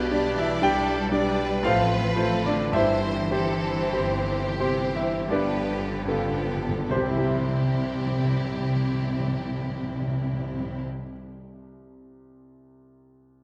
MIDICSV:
0, 0, Header, 1, 8, 480
1, 0, Start_track
1, 0, Key_signature, 0, "major"
1, 0, Tempo, 1010101
1, 780, Tempo, 1092896
1, 1259, Time_signature, 3, 2, 24, 8
1, 1260, Tempo, 1217039
1, 1740, Tempo, 1360544
1, 2220, Tempo, 1595745
1, 2700, Tempo, 1562500
1, 4706, End_track
2, 0, Start_track
2, 0, Title_t, "Violin section"
2, 0, Program_c, 0, 48
2, 0, Note_on_c, 0, 67, 86
2, 295, Note_on_c, 0, 69, 86
2, 297, Note_off_c, 0, 67, 0
2, 535, Note_off_c, 0, 69, 0
2, 538, Note_on_c, 0, 71, 104
2, 1261, Note_off_c, 0, 71, 0
2, 1263, Note_on_c, 0, 72, 92
2, 1488, Note_off_c, 0, 72, 0
2, 1499, Note_on_c, 0, 69, 83
2, 1743, Note_off_c, 0, 69, 0
2, 1743, Note_on_c, 0, 67, 79
2, 2221, Note_off_c, 0, 67, 0
2, 2225, Note_on_c, 0, 71, 77
2, 2453, Note_off_c, 0, 71, 0
2, 2700, Note_on_c, 0, 67, 76
2, 3907, Note_off_c, 0, 67, 0
2, 4706, End_track
3, 0, Start_track
3, 0, Title_t, "Violin section"
3, 0, Program_c, 1, 48
3, 0, Note_on_c, 1, 62, 64
3, 0, Note_on_c, 1, 74, 63
3, 49, Note_off_c, 1, 74, 0
3, 50, Note_off_c, 1, 62, 0
3, 55, Note_on_c, 1, 62, 75
3, 55, Note_on_c, 1, 74, 80
3, 524, Note_off_c, 1, 62, 0
3, 524, Note_off_c, 1, 74, 0
3, 531, Note_on_c, 1, 62, 63
3, 531, Note_on_c, 1, 74, 69
3, 773, Note_off_c, 1, 62, 0
3, 773, Note_off_c, 1, 74, 0
3, 773, Note_on_c, 1, 65, 75
3, 775, Note_on_c, 1, 69, 66
3, 1004, Note_off_c, 1, 69, 0
3, 1005, Note_off_c, 1, 65, 0
3, 1009, Note_on_c, 1, 69, 76
3, 1010, Note_on_c, 1, 65, 73
3, 1252, Note_off_c, 1, 65, 0
3, 1252, Note_off_c, 1, 69, 0
3, 1258, Note_on_c, 1, 72, 66
3, 1259, Note_on_c, 1, 67, 62
3, 1485, Note_off_c, 1, 67, 0
3, 1485, Note_off_c, 1, 72, 0
3, 1489, Note_on_c, 1, 67, 72
3, 1491, Note_on_c, 1, 72, 78
3, 1962, Note_off_c, 1, 72, 0
3, 1963, Note_off_c, 1, 67, 0
3, 1966, Note_on_c, 1, 72, 64
3, 1967, Note_on_c, 1, 67, 63
3, 2206, Note_off_c, 1, 67, 0
3, 2211, Note_off_c, 1, 72, 0
3, 2211, Note_on_c, 1, 67, 72
3, 2211, Note_on_c, 1, 69, 65
3, 2447, Note_off_c, 1, 67, 0
3, 2447, Note_off_c, 1, 69, 0
3, 2450, Note_on_c, 1, 67, 66
3, 2450, Note_on_c, 1, 69, 64
3, 2692, Note_off_c, 1, 67, 0
3, 2692, Note_off_c, 1, 69, 0
3, 2696, Note_on_c, 1, 64, 68
3, 3902, Note_off_c, 1, 64, 0
3, 4706, End_track
4, 0, Start_track
4, 0, Title_t, "Grand piano"
4, 0, Program_c, 2, 0
4, 0, Control_c, 2, 64, 127
4, 0, Note_on_c, 2, 35, 89
4, 0, Note_on_c, 2, 59, 81
4, 0, Note_on_c, 2, 67, 77
4, 0, Note_on_c, 2, 71, 104
4, 54, Note_on_c, 2, 55, 65
4, 55, Note_on_c, 2, 62, 68
4, 57, Note_on_c, 2, 74, 69
4, 159, Note_off_c, 2, 71, 0
4, 162, Note_off_c, 2, 59, 0
4, 162, Note_off_c, 2, 67, 0
4, 183, Note_on_c, 2, 76, 102
4, 190, Note_on_c, 2, 64, 77
4, 274, Note_off_c, 2, 55, 0
4, 274, Note_off_c, 2, 62, 0
4, 275, Note_off_c, 2, 74, 0
4, 290, Note_off_c, 2, 76, 0
4, 291, Note_on_c, 2, 55, 60
4, 291, Note_on_c, 2, 62, 64
4, 294, Note_off_c, 2, 64, 0
4, 294, Note_on_c, 2, 74, 66
4, 299, Note_on_c, 2, 79, 113
4, 304, Note_on_c, 2, 67, 90
4, 514, Note_off_c, 2, 55, 0
4, 514, Note_off_c, 2, 62, 0
4, 515, Note_off_c, 2, 74, 0
4, 528, Note_on_c, 2, 55, 69
4, 532, Note_on_c, 2, 62, 74
4, 532, Note_on_c, 2, 74, 77
4, 757, Note_off_c, 2, 55, 0
4, 759, Note_off_c, 2, 62, 0
4, 759, Note_off_c, 2, 74, 0
4, 763, Note_off_c, 2, 79, 0
4, 765, Note_off_c, 2, 67, 0
4, 774, Note_on_c, 2, 45, 94
4, 781, Note_on_c, 2, 77, 111
4, 786, Note_on_c, 2, 72, 83
4, 787, Note_on_c, 2, 65, 82
4, 788, Control_c, 2, 64, 0
4, 793, Note_off_c, 2, 35, 0
4, 859, Control_c, 2, 64, 127
4, 1003, Note_off_c, 2, 65, 0
4, 1004, Note_off_c, 2, 72, 0
4, 1005, Note_off_c, 2, 45, 0
4, 1009, Note_on_c, 2, 57, 67
4, 1009, Note_on_c, 2, 65, 70
4, 1010, Note_on_c, 2, 72, 76
4, 1119, Note_off_c, 2, 77, 0
4, 1140, Note_on_c, 2, 74, 100
4, 1147, Note_on_c, 2, 62, 69
4, 1239, Note_off_c, 2, 57, 0
4, 1239, Note_off_c, 2, 65, 0
4, 1240, Note_off_c, 2, 72, 0
4, 1253, Note_off_c, 2, 74, 0
4, 1253, Note_on_c, 2, 43, 83
4, 1256, Note_off_c, 2, 62, 0
4, 1259, Note_on_c, 2, 76, 108
4, 1263, Note_on_c, 2, 72, 85
4, 1264, Note_on_c, 2, 64, 86
4, 1267, Control_c, 2, 64, 0
4, 1355, Control_c, 2, 64, 127
4, 1481, Note_off_c, 2, 43, 0
4, 1483, Note_off_c, 2, 72, 0
4, 1487, Note_on_c, 2, 60, 59
4, 1489, Note_on_c, 2, 67, 68
4, 1489, Note_on_c, 2, 72, 62
4, 1721, Note_off_c, 2, 60, 0
4, 1722, Note_off_c, 2, 67, 0
4, 1722, Note_off_c, 2, 72, 0
4, 1730, Note_on_c, 2, 67, 60
4, 1731, Note_on_c, 2, 60, 58
4, 1731, Note_on_c, 2, 72, 67
4, 1955, Note_off_c, 2, 60, 0
4, 1955, Note_off_c, 2, 67, 0
4, 1955, Note_off_c, 2, 72, 0
4, 1958, Note_off_c, 2, 76, 0
4, 1960, Note_off_c, 2, 64, 0
4, 1968, Note_on_c, 2, 60, 64
4, 1970, Note_on_c, 2, 67, 68
4, 1970, Note_on_c, 2, 72, 76
4, 2095, Note_on_c, 2, 76, 80
4, 2099, Note_on_c, 2, 64, 60
4, 2176, Note_off_c, 2, 76, 0
4, 2183, Note_on_c, 2, 76, 60
4, 2202, Note_off_c, 2, 60, 0
4, 2203, Note_off_c, 2, 67, 0
4, 2203, Note_off_c, 2, 72, 0
4, 2212, Note_on_c, 2, 43, 79
4, 2213, Note_off_c, 2, 64, 0
4, 2218, Note_on_c, 2, 74, 83
4, 2220, Note_off_c, 2, 76, 0
4, 2222, Note_on_c, 2, 71, 64
4, 2223, Note_on_c, 2, 62, 67
4, 2227, Control_c, 2, 64, 0
4, 2307, Control_c, 2, 64, 127
4, 2445, Note_off_c, 2, 43, 0
4, 2452, Note_on_c, 2, 59, 65
4, 2453, Note_on_c, 2, 65, 60
4, 2453, Note_on_c, 2, 69, 68
4, 2686, Note_off_c, 2, 59, 0
4, 2686, Note_off_c, 2, 65, 0
4, 2686, Note_off_c, 2, 69, 0
4, 2687, Note_off_c, 2, 74, 0
4, 2689, Note_off_c, 2, 62, 0
4, 2689, Note_off_c, 2, 71, 0
4, 2697, Note_on_c, 2, 36, 61
4, 2700, Note_on_c, 2, 72, 84
4, 2702, Note_on_c, 2, 67, 62
4, 2703, Note_on_c, 2, 60, 62
4, 2708, Control_c, 2, 64, 0
4, 2718, Note_on_c, 2, 48, 60
4, 2734, Note_off_c, 2, 60, 0
4, 2739, Note_on_c, 2, 60, 58
4, 2761, Note_on_c, 2, 64, 63
4, 2779, Note_off_c, 2, 67, 0
4, 2783, Note_on_c, 2, 67, 59
4, 2794, Control_c, 2, 64, 127
4, 2803, Note_on_c, 2, 76, 54
4, 3904, Note_off_c, 2, 36, 0
4, 3907, Note_off_c, 2, 72, 0
4, 3924, Note_off_c, 2, 48, 0
4, 3945, Note_off_c, 2, 60, 0
4, 3967, Note_off_c, 2, 64, 0
4, 3990, Note_off_c, 2, 67, 0
4, 4010, Note_off_c, 2, 76, 0
4, 4706, End_track
5, 0, Start_track
5, 0, Title_t, "Viola section"
5, 0, Program_c, 3, 48
5, 0, Note_on_c, 3, 55, 68
5, 0, Note_on_c, 3, 62, 73
5, 53, Note_off_c, 3, 55, 0
5, 53, Note_off_c, 3, 62, 0
5, 59, Note_on_c, 3, 62, 73
5, 60, Note_on_c, 3, 55, 74
5, 526, Note_off_c, 3, 55, 0
5, 526, Note_off_c, 3, 62, 0
5, 533, Note_on_c, 3, 55, 74
5, 533, Note_on_c, 3, 62, 70
5, 774, Note_off_c, 3, 55, 0
5, 774, Note_off_c, 3, 62, 0
5, 781, Note_on_c, 3, 57, 73
5, 783, Note_on_c, 3, 60, 76
5, 1007, Note_off_c, 3, 57, 0
5, 1007, Note_off_c, 3, 60, 0
5, 1012, Note_on_c, 3, 60, 74
5, 1013, Note_on_c, 3, 57, 80
5, 1252, Note_off_c, 3, 60, 0
5, 1253, Note_off_c, 3, 57, 0
5, 1257, Note_on_c, 3, 52, 67
5, 1257, Note_on_c, 3, 60, 65
5, 1482, Note_off_c, 3, 60, 0
5, 1483, Note_off_c, 3, 52, 0
5, 1487, Note_on_c, 3, 52, 74
5, 1487, Note_on_c, 3, 60, 76
5, 1962, Note_off_c, 3, 52, 0
5, 1962, Note_off_c, 3, 60, 0
5, 1972, Note_on_c, 3, 52, 72
5, 1972, Note_on_c, 3, 60, 68
5, 2214, Note_off_c, 3, 52, 0
5, 2214, Note_off_c, 3, 60, 0
5, 2216, Note_on_c, 3, 53, 64
5, 2216, Note_on_c, 3, 59, 69
5, 2448, Note_off_c, 3, 53, 0
5, 2449, Note_off_c, 3, 59, 0
5, 2451, Note_on_c, 3, 53, 68
5, 2453, Note_on_c, 3, 59, 68
5, 2692, Note_off_c, 3, 53, 0
5, 2693, Note_off_c, 3, 59, 0
5, 2696, Note_on_c, 3, 55, 71
5, 3903, Note_off_c, 3, 55, 0
5, 4706, End_track
6, 0, Start_track
6, 0, Title_t, "Cello section"
6, 0, Program_c, 4, 48
6, 0, Note_on_c, 4, 47, 90
6, 171, Note_off_c, 4, 47, 0
6, 178, Note_on_c, 4, 52, 83
6, 296, Note_off_c, 4, 52, 0
6, 298, Note_on_c, 4, 55, 101
6, 781, Note_off_c, 4, 55, 0
6, 783, Note_on_c, 4, 53, 93
6, 1138, Note_off_c, 4, 53, 0
6, 1138, Note_on_c, 4, 50, 85
6, 1260, Note_off_c, 4, 50, 0
6, 1260, Note_on_c, 4, 52, 90
6, 1970, Note_on_c, 4, 48, 81
6, 1973, Note_off_c, 4, 52, 0
6, 2089, Note_on_c, 4, 52, 76
6, 2090, Note_off_c, 4, 48, 0
6, 2214, Note_off_c, 4, 52, 0
6, 2216, Note_on_c, 4, 50, 84
6, 2695, Note_on_c, 4, 60, 75
6, 2698, Note_off_c, 4, 50, 0
6, 3901, Note_off_c, 4, 60, 0
6, 4706, End_track
7, 0, Start_track
7, 0, Title_t, "Timpani"
7, 0, Program_c, 5, 47
7, 1259, Note_on_c, 5, 43, 85
7, 1958, Note_off_c, 5, 43, 0
7, 2218, Note_on_c, 5, 43, 42
7, 2249, Note_off_c, 5, 43, 0
7, 2253, Note_on_c, 5, 43, 46
7, 2286, Note_off_c, 5, 43, 0
7, 2289, Note_on_c, 5, 43, 46
7, 2322, Note_off_c, 5, 43, 0
7, 2326, Note_on_c, 5, 43, 50
7, 2360, Note_off_c, 5, 43, 0
7, 2364, Note_on_c, 5, 43, 49
7, 2398, Note_off_c, 5, 43, 0
7, 2402, Note_on_c, 5, 43, 56
7, 2438, Note_off_c, 5, 43, 0
7, 2443, Note_on_c, 5, 43, 59
7, 2477, Note_off_c, 5, 43, 0
7, 2481, Note_on_c, 5, 43, 75
7, 2516, Note_off_c, 5, 43, 0
7, 2520, Note_on_c, 5, 43, 77
7, 2556, Note_off_c, 5, 43, 0
7, 2559, Note_on_c, 5, 43, 88
7, 2593, Note_off_c, 5, 43, 0
7, 2597, Note_on_c, 5, 43, 104
7, 2630, Note_off_c, 5, 43, 0
7, 2633, Note_on_c, 5, 43, 115
7, 2669, Note_off_c, 5, 43, 0
7, 2699, Note_on_c, 5, 48, 90
7, 2718, Note_off_c, 5, 48, 0
7, 2718, Note_on_c, 5, 48, 75
7, 2737, Note_off_c, 5, 48, 0
7, 2737, Note_on_c, 5, 48, 92
7, 2757, Note_off_c, 5, 48, 0
7, 2758, Note_on_c, 5, 48, 86
7, 2777, Note_off_c, 5, 48, 0
7, 2777, Note_on_c, 5, 48, 88
7, 2796, Note_off_c, 5, 48, 0
7, 2798, Note_on_c, 5, 48, 80
7, 2817, Note_off_c, 5, 48, 0
7, 2818, Note_on_c, 5, 48, 98
7, 2836, Note_off_c, 5, 48, 0
7, 2836, Note_on_c, 5, 48, 93
7, 2855, Note_off_c, 5, 48, 0
7, 2855, Note_on_c, 5, 48, 84
7, 2875, Note_off_c, 5, 48, 0
7, 2875, Note_on_c, 5, 48, 75
7, 2895, Note_off_c, 5, 48, 0
7, 2895, Note_on_c, 5, 48, 90
7, 2914, Note_off_c, 5, 48, 0
7, 2915, Note_on_c, 5, 48, 78
7, 2935, Note_off_c, 5, 48, 0
7, 2935, Note_on_c, 5, 48, 83
7, 2955, Note_off_c, 5, 48, 0
7, 2957, Note_on_c, 5, 48, 81
7, 2975, Note_off_c, 5, 48, 0
7, 2975, Note_on_c, 5, 48, 84
7, 2995, Note_off_c, 5, 48, 0
7, 2995, Note_on_c, 5, 48, 80
7, 3014, Note_off_c, 5, 48, 0
7, 3014, Note_on_c, 5, 48, 87
7, 3033, Note_off_c, 5, 48, 0
7, 3034, Note_on_c, 5, 48, 85
7, 3054, Note_off_c, 5, 48, 0
7, 3054, Note_on_c, 5, 48, 90
7, 3073, Note_off_c, 5, 48, 0
7, 3073, Note_on_c, 5, 48, 80
7, 3092, Note_off_c, 5, 48, 0
7, 3092, Note_on_c, 5, 48, 83
7, 3111, Note_off_c, 5, 48, 0
7, 3111, Note_on_c, 5, 48, 78
7, 3130, Note_off_c, 5, 48, 0
7, 3131, Note_on_c, 5, 48, 80
7, 3150, Note_off_c, 5, 48, 0
7, 3151, Note_on_c, 5, 48, 75
7, 3171, Note_off_c, 5, 48, 0
7, 3171, Note_on_c, 5, 48, 82
7, 3190, Note_off_c, 5, 48, 0
7, 3190, Note_on_c, 5, 48, 81
7, 3209, Note_off_c, 5, 48, 0
7, 3210, Note_on_c, 5, 48, 89
7, 3230, Note_off_c, 5, 48, 0
7, 3231, Note_on_c, 5, 48, 76
7, 3249, Note_off_c, 5, 48, 0
7, 3249, Note_on_c, 5, 48, 88
7, 3269, Note_off_c, 5, 48, 0
7, 3269, Note_on_c, 5, 48, 78
7, 3288, Note_off_c, 5, 48, 0
7, 3288, Note_on_c, 5, 48, 83
7, 3307, Note_off_c, 5, 48, 0
7, 3307, Note_on_c, 5, 48, 78
7, 3325, Note_off_c, 5, 48, 0
7, 3325, Note_on_c, 5, 48, 83
7, 3345, Note_off_c, 5, 48, 0
7, 3345, Note_on_c, 5, 48, 84
7, 3365, Note_off_c, 5, 48, 0
7, 3366, Note_on_c, 5, 48, 94
7, 3385, Note_off_c, 5, 48, 0
7, 3385, Note_on_c, 5, 48, 81
7, 3404, Note_off_c, 5, 48, 0
7, 3404, Note_on_c, 5, 48, 93
7, 3423, Note_off_c, 5, 48, 0
7, 3423, Note_on_c, 5, 48, 82
7, 3441, Note_off_c, 5, 48, 0
7, 3441, Note_on_c, 5, 48, 81
7, 3461, Note_off_c, 5, 48, 0
7, 3463, Note_on_c, 5, 48, 87
7, 3480, Note_off_c, 5, 48, 0
7, 3480, Note_on_c, 5, 48, 88
7, 3499, Note_off_c, 5, 48, 0
7, 3499, Note_on_c, 5, 48, 75
7, 3519, Note_off_c, 5, 48, 0
7, 3519, Note_on_c, 5, 48, 87
7, 3539, Note_off_c, 5, 48, 0
7, 3539, Note_on_c, 5, 48, 80
7, 3557, Note_off_c, 5, 48, 0
7, 3557, Note_on_c, 5, 48, 84
7, 3577, Note_off_c, 5, 48, 0
7, 3577, Note_on_c, 5, 48, 76
7, 3596, Note_off_c, 5, 48, 0
7, 3597, Note_on_c, 5, 48, 87
7, 3617, Note_off_c, 5, 48, 0
7, 3617, Note_on_c, 5, 48, 73
7, 3636, Note_off_c, 5, 48, 0
7, 3636, Note_on_c, 5, 48, 93
7, 3655, Note_off_c, 5, 48, 0
7, 3655, Note_on_c, 5, 48, 79
7, 3674, Note_off_c, 5, 48, 0
7, 3674, Note_on_c, 5, 48, 92
7, 3693, Note_off_c, 5, 48, 0
7, 3693, Note_on_c, 5, 48, 80
7, 3712, Note_off_c, 5, 48, 0
7, 3712, Note_on_c, 5, 48, 84
7, 3731, Note_off_c, 5, 48, 0
7, 3731, Note_on_c, 5, 48, 81
7, 3751, Note_off_c, 5, 48, 0
7, 3751, Note_on_c, 5, 48, 88
7, 3770, Note_off_c, 5, 48, 0
7, 3772, Note_on_c, 5, 48, 84
7, 3791, Note_off_c, 5, 48, 0
7, 3792, Note_on_c, 5, 48, 88
7, 3812, Note_off_c, 5, 48, 0
7, 3813, Note_on_c, 5, 48, 74
7, 3832, Note_off_c, 5, 48, 0
7, 3833, Note_on_c, 5, 48, 95
7, 3852, Note_off_c, 5, 48, 0
7, 3853, Note_on_c, 5, 48, 77
7, 3873, Note_off_c, 5, 48, 0
7, 3875, Note_on_c, 5, 48, 85
7, 3894, Note_off_c, 5, 48, 0
7, 3895, Note_on_c, 5, 48, 78
7, 3915, Note_off_c, 5, 48, 0
7, 4706, End_track
8, 0, Start_track
8, 0, Title_t, "Double bass section"
8, 0, Program_c, 6, 48
8, 0, Note_on_c, 6, 35, 83
8, 241, Note_off_c, 6, 35, 0
8, 298, Note_on_c, 6, 35, 92
8, 723, Note_off_c, 6, 35, 0
8, 779, Note_on_c, 6, 33, 85
8, 1201, Note_off_c, 6, 33, 0
8, 1260, Note_on_c, 6, 31, 90
8, 1679, Note_off_c, 6, 31, 0
8, 1739, Note_on_c, 6, 31, 93
8, 2160, Note_off_c, 6, 31, 0
8, 2215, Note_on_c, 6, 31, 73
8, 2642, Note_off_c, 6, 31, 0
8, 2696, Note_on_c, 6, 36, 76
8, 3903, Note_off_c, 6, 36, 0
8, 4706, End_track
0, 0, End_of_file